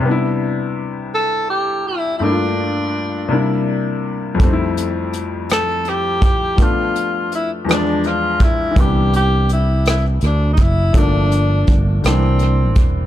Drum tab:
HH |------|------|xxxxxx|xxxxxx|
SD |------|------|---r--|---r--|
BD |------|------|o----o|o----o|

HH |xxxxxx|xxxxxx|
SD |---r--|---r--|
BD |o----o|o-o--o|